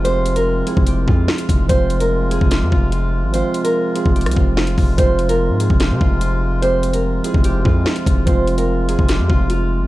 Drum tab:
HH |x---x-x-----x---x---------x-x---|x---x-x-----x---x-------x-------|x---x-x-----x---xxxx------x-o---|x---x-x-----x---x-------x-------|
SD |------------------------o-------|----------------o---------------|------------------r-----o-------|----------------o---------------|
BD |--------------o-----o-------o---|o-------------o-----o-----------|--------------o-----o-------o---|o-------------o-----o-----------|

HH |x---x-x-----x---x---------x-x---|x---x-x-----x---x-------x-------|
SD |------------------------o-------|----------------o---------------|
BD |--------------o-----o-------o---|o-------------o-----o-----------|